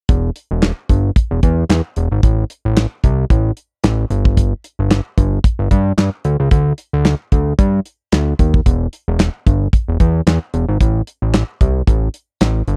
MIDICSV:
0, 0, Header, 1, 3, 480
1, 0, Start_track
1, 0, Key_signature, 1, "minor"
1, 0, Tempo, 535714
1, 79, Time_signature, 4, 2, 24, 8
1, 11438, End_track
2, 0, Start_track
2, 0, Title_t, "Analog synth bass"
2, 0, Program_c, 0, 38
2, 81, Note_on_c, 0, 28, 96
2, 273, Note_off_c, 0, 28, 0
2, 456, Note_on_c, 0, 28, 96
2, 648, Note_off_c, 0, 28, 0
2, 801, Note_on_c, 0, 31, 90
2, 993, Note_off_c, 0, 31, 0
2, 1175, Note_on_c, 0, 28, 92
2, 1259, Note_off_c, 0, 28, 0
2, 1281, Note_on_c, 0, 40, 96
2, 1473, Note_off_c, 0, 40, 0
2, 1519, Note_on_c, 0, 40, 84
2, 1627, Note_off_c, 0, 40, 0
2, 1763, Note_on_c, 0, 28, 88
2, 1869, Note_off_c, 0, 28, 0
2, 1895, Note_on_c, 0, 32, 93
2, 1979, Note_off_c, 0, 32, 0
2, 1999, Note_on_c, 0, 33, 92
2, 2192, Note_off_c, 0, 33, 0
2, 2377, Note_on_c, 0, 33, 98
2, 2568, Note_off_c, 0, 33, 0
2, 2721, Note_on_c, 0, 36, 100
2, 2913, Note_off_c, 0, 36, 0
2, 2958, Note_on_c, 0, 33, 94
2, 3151, Note_off_c, 0, 33, 0
2, 3438, Note_on_c, 0, 33, 76
2, 3631, Note_off_c, 0, 33, 0
2, 3678, Note_on_c, 0, 31, 88
2, 4063, Note_off_c, 0, 31, 0
2, 4293, Note_on_c, 0, 31, 96
2, 4486, Note_off_c, 0, 31, 0
2, 4638, Note_on_c, 0, 31, 93
2, 4831, Note_off_c, 0, 31, 0
2, 5010, Note_on_c, 0, 31, 86
2, 5096, Note_off_c, 0, 31, 0
2, 5116, Note_on_c, 0, 43, 103
2, 5310, Note_off_c, 0, 43, 0
2, 5355, Note_on_c, 0, 43, 84
2, 5465, Note_off_c, 0, 43, 0
2, 5598, Note_on_c, 0, 38, 86
2, 5706, Note_off_c, 0, 38, 0
2, 5733, Note_on_c, 0, 37, 93
2, 5818, Note_off_c, 0, 37, 0
2, 5837, Note_on_c, 0, 38, 109
2, 6031, Note_off_c, 0, 38, 0
2, 6213, Note_on_c, 0, 38, 114
2, 6406, Note_off_c, 0, 38, 0
2, 6560, Note_on_c, 0, 38, 90
2, 6752, Note_off_c, 0, 38, 0
2, 6797, Note_on_c, 0, 43, 93
2, 6990, Note_off_c, 0, 43, 0
2, 7281, Note_on_c, 0, 38, 80
2, 7473, Note_off_c, 0, 38, 0
2, 7520, Note_on_c, 0, 39, 80
2, 7712, Note_off_c, 0, 39, 0
2, 7759, Note_on_c, 0, 28, 102
2, 7952, Note_off_c, 0, 28, 0
2, 8135, Note_on_c, 0, 28, 106
2, 8327, Note_off_c, 0, 28, 0
2, 8480, Note_on_c, 0, 31, 83
2, 8672, Note_off_c, 0, 31, 0
2, 8857, Note_on_c, 0, 28, 80
2, 8940, Note_off_c, 0, 28, 0
2, 8960, Note_on_c, 0, 40, 94
2, 9152, Note_off_c, 0, 40, 0
2, 9200, Note_on_c, 0, 40, 95
2, 9307, Note_off_c, 0, 40, 0
2, 9443, Note_on_c, 0, 28, 92
2, 9549, Note_off_c, 0, 28, 0
2, 9575, Note_on_c, 0, 32, 91
2, 9659, Note_off_c, 0, 32, 0
2, 9681, Note_on_c, 0, 33, 99
2, 9873, Note_off_c, 0, 33, 0
2, 10055, Note_on_c, 0, 33, 94
2, 10247, Note_off_c, 0, 33, 0
2, 10401, Note_on_c, 0, 36, 92
2, 10593, Note_off_c, 0, 36, 0
2, 10638, Note_on_c, 0, 33, 100
2, 10831, Note_off_c, 0, 33, 0
2, 11119, Note_on_c, 0, 33, 82
2, 11311, Note_off_c, 0, 33, 0
2, 11359, Note_on_c, 0, 31, 94
2, 11438, Note_off_c, 0, 31, 0
2, 11438, End_track
3, 0, Start_track
3, 0, Title_t, "Drums"
3, 80, Note_on_c, 9, 42, 89
3, 81, Note_on_c, 9, 36, 110
3, 170, Note_off_c, 9, 42, 0
3, 171, Note_off_c, 9, 36, 0
3, 320, Note_on_c, 9, 42, 77
3, 410, Note_off_c, 9, 42, 0
3, 556, Note_on_c, 9, 42, 78
3, 560, Note_on_c, 9, 38, 101
3, 561, Note_on_c, 9, 39, 80
3, 646, Note_off_c, 9, 42, 0
3, 650, Note_off_c, 9, 38, 0
3, 650, Note_off_c, 9, 39, 0
3, 802, Note_on_c, 9, 36, 81
3, 802, Note_on_c, 9, 42, 65
3, 891, Note_off_c, 9, 36, 0
3, 891, Note_off_c, 9, 42, 0
3, 1040, Note_on_c, 9, 36, 108
3, 1043, Note_on_c, 9, 42, 88
3, 1129, Note_off_c, 9, 36, 0
3, 1133, Note_off_c, 9, 42, 0
3, 1280, Note_on_c, 9, 42, 62
3, 1281, Note_on_c, 9, 36, 82
3, 1369, Note_off_c, 9, 42, 0
3, 1371, Note_off_c, 9, 36, 0
3, 1520, Note_on_c, 9, 42, 90
3, 1526, Note_on_c, 9, 38, 107
3, 1527, Note_on_c, 9, 39, 91
3, 1609, Note_off_c, 9, 42, 0
3, 1616, Note_off_c, 9, 38, 0
3, 1617, Note_off_c, 9, 39, 0
3, 1759, Note_on_c, 9, 42, 63
3, 1848, Note_off_c, 9, 42, 0
3, 2000, Note_on_c, 9, 36, 101
3, 2001, Note_on_c, 9, 42, 88
3, 2090, Note_off_c, 9, 36, 0
3, 2090, Note_off_c, 9, 42, 0
3, 2240, Note_on_c, 9, 42, 85
3, 2330, Note_off_c, 9, 42, 0
3, 2479, Note_on_c, 9, 42, 86
3, 2483, Note_on_c, 9, 38, 102
3, 2484, Note_on_c, 9, 39, 95
3, 2569, Note_off_c, 9, 42, 0
3, 2572, Note_off_c, 9, 38, 0
3, 2573, Note_off_c, 9, 39, 0
3, 2720, Note_on_c, 9, 42, 71
3, 2722, Note_on_c, 9, 36, 74
3, 2810, Note_off_c, 9, 42, 0
3, 2811, Note_off_c, 9, 36, 0
3, 2959, Note_on_c, 9, 36, 110
3, 2965, Note_on_c, 9, 42, 73
3, 3048, Note_off_c, 9, 36, 0
3, 3054, Note_off_c, 9, 42, 0
3, 3197, Note_on_c, 9, 42, 57
3, 3286, Note_off_c, 9, 42, 0
3, 3437, Note_on_c, 9, 42, 91
3, 3444, Note_on_c, 9, 38, 106
3, 3444, Note_on_c, 9, 39, 99
3, 3526, Note_off_c, 9, 42, 0
3, 3533, Note_off_c, 9, 38, 0
3, 3534, Note_off_c, 9, 39, 0
3, 3678, Note_on_c, 9, 42, 65
3, 3767, Note_off_c, 9, 42, 0
3, 3811, Note_on_c, 9, 36, 101
3, 3900, Note_off_c, 9, 36, 0
3, 3918, Note_on_c, 9, 36, 97
3, 3918, Note_on_c, 9, 42, 104
3, 4007, Note_off_c, 9, 42, 0
3, 4008, Note_off_c, 9, 36, 0
3, 4160, Note_on_c, 9, 42, 83
3, 4250, Note_off_c, 9, 42, 0
3, 4397, Note_on_c, 9, 42, 83
3, 4400, Note_on_c, 9, 38, 109
3, 4401, Note_on_c, 9, 39, 85
3, 4486, Note_off_c, 9, 42, 0
3, 4490, Note_off_c, 9, 38, 0
3, 4491, Note_off_c, 9, 39, 0
3, 4638, Note_on_c, 9, 42, 64
3, 4639, Note_on_c, 9, 36, 83
3, 4728, Note_off_c, 9, 36, 0
3, 4728, Note_off_c, 9, 42, 0
3, 4876, Note_on_c, 9, 36, 114
3, 4883, Note_on_c, 9, 42, 85
3, 4966, Note_off_c, 9, 36, 0
3, 4972, Note_off_c, 9, 42, 0
3, 5117, Note_on_c, 9, 36, 74
3, 5117, Note_on_c, 9, 42, 66
3, 5206, Note_off_c, 9, 42, 0
3, 5207, Note_off_c, 9, 36, 0
3, 5356, Note_on_c, 9, 42, 84
3, 5363, Note_on_c, 9, 38, 115
3, 5363, Note_on_c, 9, 39, 102
3, 5445, Note_off_c, 9, 42, 0
3, 5452, Note_off_c, 9, 38, 0
3, 5453, Note_off_c, 9, 39, 0
3, 5596, Note_on_c, 9, 42, 63
3, 5686, Note_off_c, 9, 42, 0
3, 5834, Note_on_c, 9, 42, 98
3, 5836, Note_on_c, 9, 36, 111
3, 5924, Note_off_c, 9, 42, 0
3, 5926, Note_off_c, 9, 36, 0
3, 6074, Note_on_c, 9, 42, 85
3, 6164, Note_off_c, 9, 42, 0
3, 6316, Note_on_c, 9, 42, 83
3, 6319, Note_on_c, 9, 38, 116
3, 6320, Note_on_c, 9, 39, 81
3, 6405, Note_off_c, 9, 42, 0
3, 6409, Note_off_c, 9, 38, 0
3, 6410, Note_off_c, 9, 39, 0
3, 6558, Note_on_c, 9, 42, 70
3, 6560, Note_on_c, 9, 36, 84
3, 6648, Note_off_c, 9, 42, 0
3, 6649, Note_off_c, 9, 36, 0
3, 6798, Note_on_c, 9, 36, 107
3, 6804, Note_on_c, 9, 42, 81
3, 6888, Note_off_c, 9, 36, 0
3, 6894, Note_off_c, 9, 42, 0
3, 7038, Note_on_c, 9, 42, 61
3, 7128, Note_off_c, 9, 42, 0
3, 7277, Note_on_c, 9, 42, 93
3, 7284, Note_on_c, 9, 38, 100
3, 7285, Note_on_c, 9, 39, 84
3, 7367, Note_off_c, 9, 42, 0
3, 7374, Note_off_c, 9, 38, 0
3, 7374, Note_off_c, 9, 39, 0
3, 7519, Note_on_c, 9, 42, 57
3, 7520, Note_on_c, 9, 36, 78
3, 7609, Note_off_c, 9, 36, 0
3, 7609, Note_off_c, 9, 42, 0
3, 7652, Note_on_c, 9, 36, 87
3, 7742, Note_off_c, 9, 36, 0
3, 7760, Note_on_c, 9, 36, 109
3, 7763, Note_on_c, 9, 42, 85
3, 7850, Note_off_c, 9, 36, 0
3, 7852, Note_off_c, 9, 42, 0
3, 8000, Note_on_c, 9, 42, 72
3, 8090, Note_off_c, 9, 42, 0
3, 8237, Note_on_c, 9, 42, 83
3, 8241, Note_on_c, 9, 38, 118
3, 8242, Note_on_c, 9, 39, 83
3, 8327, Note_off_c, 9, 42, 0
3, 8331, Note_off_c, 9, 38, 0
3, 8331, Note_off_c, 9, 39, 0
3, 8481, Note_on_c, 9, 36, 89
3, 8482, Note_on_c, 9, 42, 68
3, 8571, Note_off_c, 9, 36, 0
3, 8571, Note_off_c, 9, 42, 0
3, 8719, Note_on_c, 9, 36, 101
3, 8724, Note_on_c, 9, 42, 81
3, 8808, Note_off_c, 9, 36, 0
3, 8814, Note_off_c, 9, 42, 0
3, 8959, Note_on_c, 9, 42, 61
3, 8961, Note_on_c, 9, 36, 76
3, 9049, Note_off_c, 9, 42, 0
3, 9051, Note_off_c, 9, 36, 0
3, 9200, Note_on_c, 9, 42, 83
3, 9206, Note_on_c, 9, 38, 107
3, 9207, Note_on_c, 9, 39, 89
3, 9289, Note_off_c, 9, 42, 0
3, 9296, Note_off_c, 9, 38, 0
3, 9297, Note_off_c, 9, 39, 0
3, 9442, Note_on_c, 9, 42, 62
3, 9531, Note_off_c, 9, 42, 0
3, 9681, Note_on_c, 9, 42, 98
3, 9682, Note_on_c, 9, 36, 98
3, 9771, Note_off_c, 9, 36, 0
3, 9771, Note_off_c, 9, 42, 0
3, 9922, Note_on_c, 9, 42, 74
3, 10011, Note_off_c, 9, 42, 0
3, 10158, Note_on_c, 9, 42, 88
3, 10162, Note_on_c, 9, 38, 109
3, 10163, Note_on_c, 9, 39, 88
3, 10248, Note_off_c, 9, 42, 0
3, 10252, Note_off_c, 9, 38, 0
3, 10252, Note_off_c, 9, 39, 0
3, 10401, Note_on_c, 9, 36, 82
3, 10401, Note_on_c, 9, 42, 66
3, 10490, Note_off_c, 9, 42, 0
3, 10491, Note_off_c, 9, 36, 0
3, 10639, Note_on_c, 9, 36, 103
3, 10645, Note_on_c, 9, 42, 87
3, 10729, Note_off_c, 9, 36, 0
3, 10735, Note_off_c, 9, 42, 0
3, 10877, Note_on_c, 9, 42, 66
3, 10967, Note_off_c, 9, 42, 0
3, 11117, Note_on_c, 9, 42, 92
3, 11124, Note_on_c, 9, 38, 118
3, 11124, Note_on_c, 9, 39, 93
3, 11206, Note_off_c, 9, 42, 0
3, 11213, Note_off_c, 9, 38, 0
3, 11214, Note_off_c, 9, 39, 0
3, 11358, Note_on_c, 9, 42, 57
3, 11438, Note_off_c, 9, 42, 0
3, 11438, End_track
0, 0, End_of_file